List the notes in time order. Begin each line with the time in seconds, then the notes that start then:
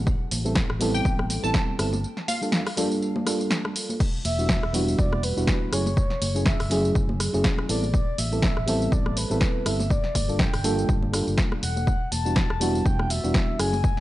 Already playing: A1
0.07 kick, tambourine
0.31 A1, open hi-hat, tambourine, high conga
0.45 G3 B3 C4 E4 A4, tambourine
0.55 kick, snare, tambourine, low conga
0.70 A1, cross-stick
0.79 G3 B3 C4 E4 A4, open hi-hat, tambourine, high conga, low conga
0.94 G5, tambourine
1.05 A1, kick, tambourine
1.19 cross-stick, high conga
1.30 open hi-hat, tambourine
1.43 A1 G3 B3 C4 E4 A4 A5, tambourine
1.54 kick, snare, tambourine, high conga
1.78 G1 G3 B3 C4 E4 A4, cross-stick, open hi-hat, tambourine
1.93 tambourine, muted conga, high conga
2.04 tambourine
2.17 snare
2.28 F5, open hi-hat, tambourine, high conga
2.41 G3 A#3 D4 F4 A4, tambourine, muted conga
2.52 snare, tambourine, low conga
2.67 cross-stick, open hi-hat
2.77 G3 A#3 D4 F4 A4, open hi-hat, tambourine, high conga, low conga
2.92 tambourine
3.02 tambourine
3.16 muted conga, high conga
3.25 G3 A#3 D4 F4 A4, cross-stick, open hi-hat, tambourine
3.40 tambourine, muted conga
3.51 snare, tambourine, high conga
3.65 cross-stick, muted conga
3.76 open hi-hat, tambourine
3.89 tambourine, high conga
4.00 kick, crash, tambourine
4.25 E1 E5, open hi-hat, tambourine, high conga
4.38 G3 B3 D4 E4 F#4, tambourine
4.49 kick, snare, tambourine, low conga
4.63 E1, cross-stick
4.73 G3 B3 D4 E4 F#4, open hi-hat, tambourine, high conga, low conga
4.88 tambourine
4.99 E1 D5, kick, tambourine
5.12 cross-stick, high conga
5.23 B4, open hi-hat, tambourine
5.36 E1 G3 B3 D4 E4 F#4, tambourine
5.47 kick, snare, tambourine, high conga
5.72 F#1 F#3 A3 C#4 E4 G#4 C#5, cross-stick, open hi-hat, tambourine
5.86 tambourine, muted conga, high conga
5.97 C#5, kick, tambourine
6.10 snare
6.22 F#1, open hi-hat, tambourine, high conga
6.35 F#3 A3 C#4 E4 G#4, tambourine
6.46 E5, kick, snare, tambourine, low conga
6.60 F#1, cross-stick, open hi-hat
6.70 F#3 A3 C#4 E4 G#4, open hi-hat, tambourine, high conga, low conga
6.85 tambourine
6.95 F#1, kick, tambourine
7.09 muted conga, high conga
7.20 cross-stick, open hi-hat, tambourine
7.33 F#1 F#3 A3 C#4 E4 G#4, tambourine, muted conga
7.44 kick, snare, tambourine, high conga
7.58 cross-stick, muted conga
7.69 A1 G3 B3 C4 E4 A4 D5, open hi-hat, tambourine
7.83 tambourine, high conga
7.94 kick, tambourine
8.18 A1 E5, open hi-hat, tambourine, high conga
8.32 G3 B3 C4 E4 A4, tambourine
8.42 kick, snare, tambourine, low conga
8.57 A1, cross-stick
8.66 G3 B3 C4 E4 A4, open hi-hat, tambourine, high conga, low conga
8.82 tambourine
8.92 A1 D5, kick, tambourine
9.06 cross-stick, high conga
9.17 B4, open hi-hat, tambourine
9.30 A1 G3 B3 C4 E4 A4, tambourine
9.41 kick, snare, tambourine, high conga
9.65 G1 G3 B3 C4 E4 A4 E5, cross-stick, open hi-hat, tambourine
9.80 tambourine, muted conga, high conga
9.90 D5, kick, tambourine
10.04 snare
10.15 G1, kick, open hi-hat, tambourine, high conga
10.28 G3 A#3 D4 F4 A4, tambourine
10.39 G5, kick, snare, tambourine, low conga
10.54 G1, cross-stick, open hi-hat
10.64 G3 A#3 D4 F4 A4, open hi-hat, tambourine, high conga, low conga
10.79 tambourine
10.89 G1, kick, tambourine
11.03 muted conga, high conga
11.12 G3 A#3 D4 F4 A4, cross-stick, open hi-hat, tambourine
11.27 G1, tambourine, muted conga
11.38 kick, snare, tambourine, high conga
11.52 cross-stick, muted conga
11.63 E1 F#5, open hi-hat, tambourine
11.76 tambourine, high conga
11.87 kick, tambourine
12.12 E1 A5, open hi-hat, tambourine, high conga
12.25 G3 B3 D4 E4 F#4, tambourine
12.36 kick, snare, tambourine, low conga
12.50 E1, cross-stick
12.60 G3 B3 D4 E4 F#4, open hi-hat, tambourine, high conga, low conga
12.75 tambourine
12.86 E1 G5, kick, tambourine
12.99 cross-stick, high conga
13.10 E5, open hi-hat, tambourine
13.23 E1 G3 B3 D4 E4 F#4, tambourine
13.34 kick, snare, tambourine, high conga
13.59 F#1 F#3 A3 C#4 E4 G#4 G#5, cross-stick, open hi-hat, tambourine
13.73 tambourine, muted conga, high conga
13.84 kick, tambourine